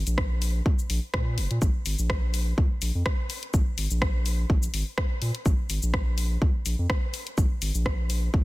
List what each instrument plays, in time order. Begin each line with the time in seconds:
0.07 sub bass A#1, closed hi-hat, shaker
0.18 kick, cross-stick
0.42 open hi-hat, shaker
0.66 kick
0.79 shaker
0.90 sub bass A#1, open hi-hat
1.14 sub bass A#2, kick, cross-stick
1.38 sub bass F1, open hi-hat
1.51 sub bass A#2, closed hi-hat
1.62 sub bass A#1, kick, shaker
1.86 sub bass G#1, open hi-hat, shaker
1.99 sub bass A#1, shaker
2.10 kick, cross-stick
2.34 open hi-hat, shaker
2.58 sub bass C#2, kick
2.82 sub bass A#1, open hi-hat, shaker
2.95 sub bass F2
3.06 kick, cross-stick
3.30 open hi-hat, shaker
3.43 closed hi-hat
3.54 sub bass A#1, kick, shaker
3.78 sub bass G#1, open hi-hat, shaker
3.91 sub bass A#1, shaker
4.02 kick, cross-stick
4.26 open hi-hat, shaker
4.50 sub bass A#1, kick
4.63 shaker
4.74 sub bass G#1, open hi-hat
4.98 kick, cross-stick
5.22 sub bass A#2, open hi-hat
5.35 closed hi-hat
5.46 sub bass A#1, kick, shaker
5.70 sub bass G#1, open hi-hat, shaker
5.83 sub bass A#1, shaker
5.94 kick, cross-stick
6.18 open hi-hat, shaker
6.42 sub bass C#2, kick
6.66 sub bass A#1, open hi-hat, shaker
6.79 sub bass F2
6.90 kick, cross-stick
7.14 open hi-hat, shaker
7.27 closed hi-hat
7.38 sub bass A#1, kick, shaker
7.62 sub bass G#1, open hi-hat, shaker
7.75 sub bass A#1, shaker
7.86 kick, cross-stick
8.10 open hi-hat, shaker
8.34 sub bass A#1, kick